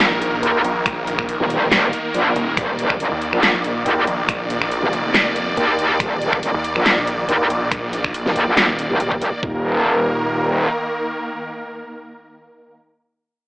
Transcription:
Already playing: supersaw synth D#3 A#3 A#4
0.00 snare, clap, closed hi-hat
0.12 detuned saw bass A#1
0.22 closed hi-hat
0.43 wobble bass D#2, closed hi-hat
0.64 detuned saw bass A#1, closed hi-hat
0.86 finger snap, kick, closed hi-hat
0.97 detuned saw bass A#1
1.07 closed hi-hat
1.19 finger snap, kick
1.29 closed hi-hat
1.40 wobble bass D#1
1.50 wobble bass D#1, closed hi-hat
1.72 snare, clap, closed hi-hat
1.93 closed hi-hat
2.14 wobble bass A#1, closed hi-hat
2.36 detuned saw bass D#1, closed hi-hat
2.57 wobble bass D#1, supersaw synth D5, finger snap, kick, closed hi-hat
2.79 closed hi-hat
2.90 finger snap, kick
3.00 wobble bass F#1, closed hi-hat
3.12 detuned saw bass D#2
3.22 closed hi-hat
3.33 wobble bass A#1, finger snap
3.43 snare, clap, closed hi-hat
3.54 detuned saw bass A#1
3.64 closed hi-hat
3.86 wobble bass D#2, closed hi-hat
4.07 detuned saw bass A#1, closed hi-hat
4.29 finger snap, kick, closed hi-hat
4.40 detuned saw bass A#1
4.50 closed hi-hat
4.62 finger snap
4.72 closed hi-hat
4.83 wobble bass D#1
4.93 detuned saw bass F1, closed hi-hat
5.14 snare, clap, closed hi-hat
5.36 closed hi-hat
5.57 wobble bass D#2, closed hi-hat
5.79 closed hi-hat
6.00 wobble bass D#1, finger snap, kick, closed hi-hat
6.22 closed hi-hat
6.33 finger snap, kick
6.43 wobble bass F#1, closed hi-hat
6.54 detuned saw bass D#2
6.64 closed hi-hat
6.76 wobble bass A#1, finger snap
6.86 snare, clap, closed hi-hat
6.97 detuned saw bass A#1
7.07 closed hi-hat
7.29 wobble bass D#2, closed hi-hat
7.50 detuned saw bass A#1, closed hi-hat
7.72 finger snap, kick, closed hi-hat
7.83 detuned saw bass A#1
7.93 closed hi-hat
8.04 finger snap, kick
8.14 closed hi-hat
8.26 wobble bass D#1, snare
8.36 wobble bass D#2, closed hi-hat
8.47 wobble bass A#1
8.57 snare, clap, closed hi-hat
8.69 detuned saw bass D#1
8.79 closed hi-hat
8.90 wobble bass D#1
9.00 closed hi-hat
9.12 kick
9.22 closed hi-hat
9.43 wobble bass D#1, supersaw synth D#3 A#3 A#4, kick, floor tom

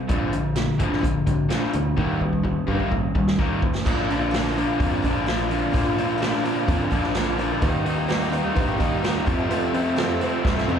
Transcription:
0.09 picked electric bass A#1, overdriven electric guitar A#2 D3 F3, kick, closed hi-hat
0.33 overdriven electric guitar A#2 D3, closed hi-hat
0.56 overdriven electric guitar A#2 D3, snare, closed hi-hat
0.79 picked electric bass A#1, overdriven electric guitar A#2 D3 F3, kick, closed hi-hat
0.93 snare
1.02 picked electric bass A#1, overdriven electric guitar A#2 D3, kick, closed hi-hat
1.26 picked electric bass A#1, overdriven electric guitar A#2 D3, kick, closed hi-hat
1.49 overdriven electric guitar A#2 D3 F3, snare, closed hi-hat
1.73 picked electric bass D2, overdriven electric guitar A#2 D3, closed hi-hat
1.97 picked electric bass D#2, overdriven electric guitar D#3 G3 A#3, kick
2.21 overdriven electric guitar D#3 G3, kick
2.33 kick
2.44 overdriven electric guitar D#3 G3, kick
2.67 picked electric bass G2, overdriven electric guitar D#3 G3 A#3, kick
2.80 kick
2.91 picked electric bass A#1, overdriven electric guitar D#3 G3, kick
3.15 picked electric bass D#2, overdriven electric guitar D#3 G3, kick
3.28 snare
3.39 overdriven electric guitar D#3 G3 A#3, kick
3.62 overdriven electric guitar D#3 G3, kick
3.75 snare
3.85 picked electric bass A#1, overdriven electric guitar A#2 D3 F3 A#3 D4, tonewheel organ A#3 F4 D5, steel-string acoustic guitar F4, kick, crash
4.10 overdriven electric guitar A#2 D3 F3 A#3 D4, open hi-hat
4.19 steel-string acoustic guitar A#3 D4 F4
4.32 overdriven electric guitar A#2 D3 F3 A#3 D4, steel-string acoustic guitar F4, snare, open hi-hat
4.47 snare
4.56 overdriven electric guitar A#2 D3 F3 A#3 D4, steel-string acoustic guitar F4, open hi-hat
4.67 steel-string acoustic guitar A#3 D4 F4
4.79 picked electric bass F2, overdriven electric guitar A#2 D3 F3 A#3 D4, kick, open hi-hat
4.91 steel-string acoustic guitar A#3 D4 F4
5.03 picked electric bass A#1, overdriven electric guitar A#2 D3 F3 A#3 D4, steel-string acoustic guitar F4, kick, open hi-hat
5.27 overdriven electric guitar A#2 D3 F3 A#3 D4, steel-string acoustic guitar F4, snare, open hi-hat
5.50 overdriven electric guitar A#2 D3 F3 A#3 D4, steel-string acoustic guitar F4, open hi-hat
5.61 steel-string acoustic guitar A#3 D4 F4
5.73 overdriven electric guitar A#2 D3 F3 A#3 D4, picked electric bass A#2, steel-string acoustic guitar F4, kick, open hi-hat
5.97 overdriven electric guitar A#2 D3 F3 A#3 D4, open hi-hat
6.08 steel-string acoustic guitar A#3 D4 F4
6.19 overdriven electric guitar A#2 D3 F3 A#3 D4, steel-string acoustic guitar F4, snare, open hi-hat
6.35 snare
6.43 overdriven electric guitar A#2 D3 F3 A#3 D4, steel-string acoustic guitar F4, open hi-hat
6.55 steel-string acoustic guitar A#3 D4 F4
6.67 picked electric bass F2, overdriven electric guitar A#2 D3 F3 A#3 D4, kick, open hi-hat
6.80 steel-string acoustic guitar A#3 D4 F4
6.92 picked electric bass A#1, overdriven electric guitar A#2 D3 F3 A#3 D4, steel-string acoustic guitar F4, kick, open hi-hat
7.03 snare
7.15 overdriven electric guitar A#2 D3 F3 A#3 D4, steel-string acoustic guitar F4, snare, open hi-hat
7.38 overdriven electric guitar A#2 D3 F3 A#3 D4, steel-string acoustic guitar F4, open hi-hat
7.49 steel-string acoustic guitar A#3 D4 F4
7.60 picked electric bass D#2, overdriven electric guitar D#3 G3 A#3 D#4, tonewheel organ A#3 G4 D#5, steel-string acoustic guitar G4, kick, open hi-hat, cowbell
7.85 overdriven electric guitar D#3 G3 A#3 D#4, open hi-hat, cowbell
7.96 steel-string acoustic guitar A#3 D#4 G4
8.07 overdriven electric guitar D#3 G3 A#3 D#4, steel-string acoustic guitar G4, snare, open hi-hat, cowbell
8.22 snare
8.31 overdriven electric guitar D#3 G3 A#3 D#4, steel-string acoustic guitar G4, open hi-hat, cowbell
8.42 steel-string acoustic guitar A#3 D#4 G4
8.55 picked electric bass A#1, overdriven electric guitar D#3 G3 A#3 D#4, kick, open hi-hat, cowbell
8.66 steel-string acoustic guitar A#3 D#4 G4
8.78 picked electric bass D#2, overdriven electric guitar D#3 G3 A#3 D#4, steel-string acoustic guitar G4, kick, open hi-hat
9.02 overdriven electric guitar D#3 G3 A#3 D#4, steel-string acoustic guitar G4, snare, open hi-hat, cowbell
9.26 overdriven electric guitar F2 C3 F3 A3 C4, picked electric bass F2, tonewheel organ C4 A4 F5, steel-string acoustic guitar A4, kick, open hi-hat
9.39 steel-string acoustic guitar F3 A3 C4 A4
9.49 overdriven electric guitar F2 C3 F3 A3 C4, steel-string acoustic guitar A4, open hi-hat, cowbell
9.73 overdriven electric guitar F2 C3 F3 A3 C4, open hi-hat, cowbell
9.85 steel-string acoustic guitar F3 A3 C4 A4
9.96 overdriven electric guitar F2 C3 F3 A3 C4, steel-string acoustic guitar A4, snare, open hi-hat, cowbell
10.21 overdriven electric guitar F2 C3 F3 A3 C4, steel-string acoustic guitar A4, open hi-hat, cowbell
10.33 steel-string acoustic guitar F3 A3 C4 A4
10.45 picked electric bass C2, overdriven electric guitar F2 C3 F3 A3 C4, kick, snare, cowbell
10.57 steel-string acoustic guitar F3 A3 C4 A4, snare
10.68 picked electric bass F2, overdriven electric guitar F2 C3 F3 A3 C4, steel-string acoustic guitar A4

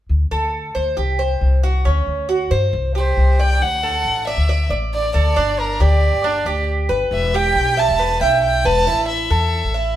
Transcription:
0.09 upright bass D2
0.31 upright bass D2, cuban tres A4
0.75 upright bass D2, cuban tres C5
0.97 upright bass C2, cuban tres G4
1.19 cuban tres C5
1.41 upright bass C2
1.63 cuban tres F#4
1.85 upright bass D2, cuban tres C#4
2.06 upright bass D2
2.29 cuban tres F#4
2.51 upright bass G2, cuban tres C5
2.73 upright bass C2
2.95 cuban tres G4, violin C5
3.17 upright bass C2
3.40 cuban tres D5, violin G5
3.61 upright bass D2, violin F#5
3.83 cuban tres A4
4.05 upright bass A1
4.27 cuban tres D5, violin E5
4.37 upright bass D2
4.49 cuban tres D5
4.70 upright bass A1, cuban tres D5
4.95 violin D5
5.14 upright bass D2, cuban tres A4, violin D5
5.36 upright bass G1, cuban tres D4
5.59 violin A#4
5.80 upright bass D2, cuban tres G4, violin D5
6.12 upright bass G1
6.24 cuban tres D4
6.45 upright bass D2, cuban tres G4
6.89 upright bass G1, cuban tres B4
7.11 upright bass E1, violin E5
7.34 cuban tres G4, violin G5
7.55 upright bass B1
7.77 cuban tres E5, violin A5
7.88 upright bass E1
7.99 cuban tres B4
8.21 upright bass B1, cuban tres E5, violin G5
8.44 violin G5
8.64 upright bass E1, cuban tres B4, violin A5
8.87 upright bass A1, cuban tres E4
9.08 violin E5
9.30 upright bass E2, cuban tres A4
9.64 upright bass A1
9.74 cuban tres E4

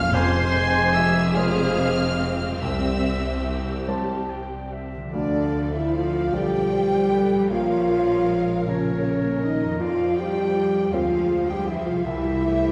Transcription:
Already playing: harp F2 F3 C#5, felt piano F3 F4 C#5, viola section F4, violin section F5 F6, oboe F5, clarinet F5
0.01 harp G#3
0.05 harp F4
0.10 viola section C4, harp C5, oboe C5, violin section C6
0.14 double bass section F1, cello section F2, felt piano F2, french horn section G#3 C4, viola section G#4, violin section C5, clarinet G#5
0.94 oboe E5, violin section E5 E6
1.35 french horn section G#3 C4, felt piano G#3 F4 C5, clarinet C5, oboe F5, violin section F5 F6
2.44 harp C3
2.49 harp G3
2.53 harp G4
2.58 viola section G4, harp C5, oboe E5
2.62 double bass section C2, cello section C2, felt piano C2, french horn section G3 C4, clarinet E5, violin section E5 E6
3.88 felt piano G3 G4 C5, clarinet A5
4.30 clarinet G5
4.73 clarinet E5
4.95 harp D3
4.99 harp F3
5.04 harp D4
5.09 harp A4
5.13 felt piano D2, double bass section D2, cello section D3, viola section F3 A4, french horn section D4, violin section D5, flute D5, clarinet F5
5.72 cello section E3, french horn section E4, flute E5, violin section E5
5.93 cello section F3, french horn section F4, violin section F5, flute F5
6.32 double bass section B1, felt piano F3 D4 A4, cello section G3, viola section G4, french horn section G4, clarinet D5, flute G5, violin section G5
6.72 viola section F4, clarinet C5
7.12 viola section A4, clarinet B4
7.33 harp A#2
7.37 harp F3
7.42 harp C#4
7.46 felt piano A#1, viola section F3 A#4, cello section F3, harp A#4, violin section C#5
7.50 double bass section A#1, french horn section F4, clarinet C#5, violin section F5, flute F5
7.89 viola section G3
8.28 viola section G#3
8.67 cello section C#3, felt piano F3 C#4 A#4, viola section A#3, french horn section C#4, clarinet A#4, violin section C#5, flute C#5
9.42 cello section D#3, french horn section D#4, violin section D#5, flute D#5
9.63 harp F2
9.72 harp C4
9.77 french horn section F4, harp C5
9.81 felt piano F2, double bass section F2, cello section F3, viola section F3 F4, violin section C5 F5, clarinet D5, flute F5
10.18 cello section G3, french horn section G4, violin section G5, flute G5
10.92 double bass section D2, cello section F3, viola section F3 G#4, felt piano G#3 C4 C5, french horn section F4, violin section C5 F5, clarinet C5, flute F5
11.48 cello section G3, french horn section G4, violin section G5, flute G5
11.67 cello section E3, french horn section E4, violin section E5, flute E5
11.85 harp C3, cello section F3, french horn section F4, violin section F5, flute F5
11.92 harp G3
11.97 harp C4
12.02 cello section E3, french horn section E4, harp C5, violin section E5
12.06 double bass section C2, felt piano C2, viola section G3 G4, violin section E5, clarinet E5, flute E5
12.43 viola section A3, clarinet C5

